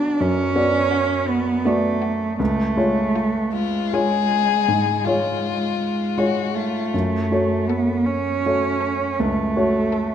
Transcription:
0.00 2.42 B1 soft
0.00 0.55 B3 soft
0.00 0.21 D4 medium
0.00 0.11 F#4 soft
0.00 0.56 F#4 soft
0.00 0.56 D5 soft
0.20 0.54 F#2 soft
0.20 1.29 C#4 medium
0.55 1.61 B3 soft
0.55 1.61 F#4 soft
0.55 1.61 D5 soft
0.91 1.19 F#4 soft
1.28 1.66 B3 medium
1.65 2.40 A3 medium
1.65 2.36 B3 soft
1.65 2.36 F#4 soft
1.65 2.36 D5 soft
2.02 2.30 F#4 soft
2.39 2.76 C#2 soft
2.39 3.54 A3 medium
2.77 3.88 G#3 soft
2.77 3.88 F4 soft
2.77 3.88 C#5 soft
3.16 3.44 F4 soft
3.52 5.79 G#3 soft
3.52 3.95 F4 soft
3.93 4.64 G#3 soft
3.93 4.65 F4 soft
3.93 5.07 G#4 soft
3.93 4.65 C#5 soft
4.68 5.04 G#2 soft
5.05 6.13 G#3 soft
5.05 6.19 F4 soft
5.05 6.14 F4 soft
5.05 6.14 C#5 soft
5.79 6.56 G#3 soft
6.17 6.89 G#3 soft
6.17 6.89 F4 soft
6.17 6.56 F#4 soft
6.17 6.90 C#5 soft
6.54 7.69 A3 medium
6.54 6.93 F4 soft
6.94 7.30 F#2 soft
7.31 8.40 A3 soft
7.31 8.41 F#4 soft
7.31 8.41 C#5 soft
7.67 8.07 B3 soft
7.67 7.97 A4 soft
8.06 9.21 C#4 medium
8.46 9.16 A3 soft
8.46 9.16 F#4 soft
8.46 9.16 C#5 soft
8.81 9.09 A4 soft
9.19 9.55 C#2 soft
9.19 10.15 A3 medium
9.56 10.15 A3 soft
9.56 10.15 F#4 soft
9.56 10.15 C#5 soft
9.93 10.15 A4 soft

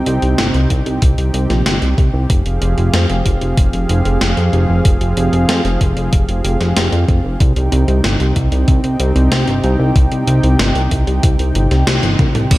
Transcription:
0.00 2.26 C3 medium
0.00 2.26 C4 medium
0.00 2.26 D#4 medium
0.00 7.36 G4 medium
0.00 2.26 G5 medium
0.06 0.19 C2 medium
0.06 closed hi-hat medium
0.22 0.35 C2 medium
0.22 closed hi-hat soft
0.38 0.51 G1 loud
0.38 snare loud
0.38 closed hi-hat medium
0.54 0.67 C2 medium
0.54 closed hi-hat soft
0.70 0.83 C2 loud
0.70 kick medium
0.70 closed hi-hat medium
0.86 0.99 C2 medium
0.86 closed hi-hat soft
1.02 1.15 C2 medium
1.02 kick loud
1.02 closed hi-hat medium
1.18 1.31 C2 medium
1.18 closed hi-hat soft
1.34 1.47 C2 medium
1.34 closed hi-hat medium
1.50 1.62 A#1 medium
1.50 snare soft
1.50 closed hi-hat soft
1.66 1.78 G1 loud
1.66 snare loud
1.66 closed hi-hat medium
1.82 1.94 C2 medium
1.82 closed hi-hat soft
1.98 2.10 C2 medium
1.98 kick loud
1.98 closed hi-hat soft
2.14 2.26 C2 medium
2.30 2.42 F1 loud
2.30 7.36 F3 medium
2.30 7.36 C4 medium
2.30 7.36 G#4 medium
2.30 7.36 F5 medium
2.30 kick loud
2.30 closed hi-hat medium
2.46 2.58 F1 medium
2.46 closed hi-hat soft
2.62 2.74 F1 medium
2.62 closed hi-hat medium
2.77 2.90 F1 medium
2.77 closed hi-hat soft
2.93 3.06 F2 medium
2.93 snare loud
2.93 closed hi-hat medium
3.10 3.22 F1 medium
3.10 closed hi-hat soft
3.26 3.38 F1 medium
3.26 kick medium
3.26 closed hi-hat medium
3.41 3.54 F1 medium
3.41 closed hi-hat soft
3.57 3.70 F1 medium
3.57 kick loud
3.57 closed hi-hat medium
3.73 3.86 F1 medium
3.73 closed hi-hat soft
3.89 4.02 F1 medium
3.89 closed hi-hat medium
4.05 4.18 F1 medium
4.05 closed hi-hat soft
4.21 4.34 F1 loud
4.21 snare loud
4.21 closed hi-hat medium
4.37 4.50 F2 medium
4.37 closed hi-hat soft
4.53 4.66 F1 loud
4.53 closed hi-hat soft
4.69 4.82 F1 medium
4.85 4.98 F1 loud
4.85 kick loud
4.85 closed hi-hat medium
5.01 5.13 F1 medium
5.01 closed hi-hat soft
5.17 5.29 F1 medium
5.17 closed hi-hat medium
5.33 5.45 F1 medium
5.33 closed hi-hat soft
5.49 5.61 F2 medium
5.49 snare loud
5.49 closed hi-hat medium
5.65 5.77 F1 medium
5.65 closed hi-hat soft
5.81 5.93 F1 medium
5.81 kick medium
5.81 closed hi-hat medium
5.97 6.09 F1 medium
5.97 closed hi-hat soft
6.13 6.25 F1 loud
6.13 kick loud
6.13 closed hi-hat medium
6.29 6.41 F1 medium
6.29 closed hi-hat soft
6.45 6.57 F1 medium
6.45 closed hi-hat medium
6.61 6.73 F1 medium
6.61 snare soft
6.61 closed hi-hat soft
6.76 6.89 F1 loud
6.76 snare loud
6.76 closed hi-hat medium
6.92 7.05 F2 medium
6.92 closed hi-hat soft
7.08 7.21 F1 medium
7.08 kick medium
7.08 closed hi-hat soft
7.24 7.37 F1 medium
7.40 7.53 C2 loud
7.40 12.47 C3 medium
7.40 12.47 C4 medium
7.40 12.47 D#4 medium
7.40 12.47 G4 medium
7.40 12.47 G5 loud
7.40 kick loud
7.40 closed hi-hat medium
7.56 7.69 C2 medium
7.56 closed hi-hat soft
7.72 7.85 C2 loud
7.72 closed hi-hat medium
7.88 8.01 C2 medium
7.88 closed hi-hat soft
8.04 8.17 G1 loud
8.04 snare loud
8.04 closed hi-hat medium
8.20 8.33 C2 medium
8.20 closed hi-hat soft
8.36 8.49 C2 medium
8.36 kick medium
8.36 closed hi-hat medium
8.52 8.64 C2 medium
8.52 closed hi-hat soft
8.68 8.81 C2 loud
8.68 kick loud
8.68 closed hi-hat medium
8.84 8.96 C2 medium
8.84 closed hi-hat soft
9.00 9.12 C2 medium
9.00 closed hi-hat medium
9.16 9.28 C2 medium
9.16 closed hi-hat soft
9.32 9.44 C2 loud
9.32 snare loud
9.32 closed hi-hat medium
9.48 9.60 G1 medium
9.48 closed hi-hat soft
9.64 9.76 C2 loud
9.64 closed hi-hat soft
9.79 9.92 C2 medium
9.96 10.08 C2 loud
9.96 kick loud
9.96 closed hi-hat medium
10.11 10.24 C2 medium
10.11 closed hi-hat soft
10.27 10.40 C2 loud
10.27 closed hi-hat medium
10.43 10.56 C2 medium
10.43 closed hi-hat soft
10.59 10.72 G1 loud
10.59 snare loud
10.59 closed hi-hat medium
10.75 10.88 C2 medium
10.75 closed hi-hat soft
10.91 11.04 C2 medium
10.91 kick medium
10.91 closed hi-hat medium
11.07 11.20 C2 medium
11.07 closed hi-hat soft
11.23 11.36 C2 loud
11.23 kick loud
11.23 closed hi-hat medium
11.39 11.52 C2 medium
11.39 closed hi-hat soft
11.55 11.68 G1 medium
11.55 closed hi-hat medium
11.71 11.84 C2 medium
11.71 snare soft
11.71 closed hi-hat soft
11.87 12.00 C2 loud
11.87 snare loud
11.87 closed hi-hat medium
12.03 12.16 G1 medium
12.03 closed hi-hat soft
12.03 high tom soft
12.19 12.32 C2 medium
12.19 kick medium
12.19 closed hi-hat soft
12.19 mid tom medium
12.35 12.48 C2 medium
12.35 closed hi-hat soft
12.35 mid tom medium
12.51 12.58 A#1 loud
12.51 12.58 A#3 medium
12.51 12.58 A#4 medium
12.51 12.58 C5 medium
12.51 12.58 D5 medium
12.51 12.58 F5 loud
12.51 kick loud
12.51 closed hi-hat medium
12.51 crash loud
12.51 cabasa soft

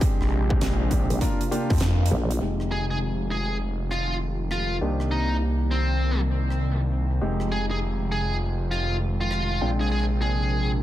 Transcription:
0.00 2.39 C3 medium
0.00 0.46 G#3 medium
0.00 1.18 G#3 medium
0.00 0.46 C4 medium
0.00 0.46 D4 medium
0.00 2.39 D4 medium
0.00 0.46 G4 medium
0.00 1.20 G4 medium
0.00 kick loud
0.00 closed hi-hat medium
0.21 0.60 A#1 medium
0.21 cross-stick soft
0.23 cross-stick soft
0.26 cross-stick soft
0.29 cross-stick soft
0.32 cross-stick soft
0.41 cross-stick soft
0.46 cross-stick soft
0.50 0.89 G#3 medium
0.50 0.89 C4 medium
0.50 0.89 D4 medium
0.50 0.89 G4 loud
0.50 kick loud
0.61 1.07 A#1 loud
0.61 snare loud
0.61 closed hi-hat medium
0.91 1.19 G#3 medium
0.91 1.19 C4 medium
0.91 1.19 D4 medium
0.91 1.19 G4 medium
0.91 kick medium
0.91 closed hi-hat medium
1.10 1.19 A#1 loud
1.10 closed hi-hat medium
1.21 1.40 A#3 medium
1.21 2.40 A#3 medium
1.21 1.40 D4 medium
1.21 1.40 F4 medium
1.21 2.40 F4 medium
1.21 1.40 A#4 loud
1.21 kick medium
1.21 closed hi-hat medium
1.41 closed hi-hat medium
1.51 1.68 A#3 loud
1.51 1.68 D4 medium
1.51 1.68 F4 medium
1.51 1.68 G4 loud
1.51 closed hi-hat medium
1.70 2.10 F2 loud
1.70 1.77 F4 medium
1.70 kick loud
1.70 cross-stick soft
1.70 closed hi-hat soft
1.73 closed hi-hat soft
1.76 closed hi-hat soft
1.78 closed hi-hat medium
1.80 snare loud
1.80 closed hi-hat medium
2.06 closed hi-hat medium
2.11 2.40 A#1 loud
2.31 closed hi-hat medium
2.41 4.79 F1 medium
2.41 9.57 D#3 medium
2.41 4.79 G#3 medium
2.41 4.79 C4 medium
2.41 4.79 D#4 medium
2.41 4.79 F4 medium
2.41 4.79 G4 medium
2.41 10.83 G5 medium
2.60 cross-stick soft
2.71 2.84 G#4 medium
2.90 2.97 G#4 medium
3.31 3.56 G#4 medium
3.91 4.16 F4 medium
3.91 cross-stick soft
4.51 4.76 F4 medium
4.51 cross-stick soft
4.81 7.19 C2 medium
4.81 7.19 A#3 medium
4.81 7.19 C4 medium
4.81 7.19 D4 medium
4.81 7.19 D#4 medium
4.81 7.19 G4 medium
5.00 cross-stick soft
5.11 5.36 D#4 medium
5.71 6.20 C4 medium
6.50 cross-stick soft
7.21 9.59 F1 medium
7.21 10.83 G#3 medium
7.21 9.59 G#3 medium
7.21 9.59 C4 medium
7.21 9.59 D#4 medium
7.21 9.59 F4 medium
7.21 9.59 G4 medium
7.40 cross-stick soft
7.52 7.64 G#4 medium
7.71 7.78 G#4 medium
8.12 8.36 G#4 medium
8.71 8.96 F4 medium
8.71 cross-stick soft
9.21 9.69 F4 medium
9.31 cross-stick soft
9.61 10.83 A#1 medium
9.61 10.83 C3 medium
9.61 10.83 G#3 medium
9.61 10.83 C4 medium
9.61 10.83 D4 medium
9.61 10.83 G5 medium
9.81 9.87 G#4 medium
9.81 cross-stick soft
9.88 10.04 G#4 medium
9.88 cross-stick soft
9.92 cross-stick soft
9.98 cross-stick soft
10.02 cross-stick soft
10.22 10.71 G#4 medium

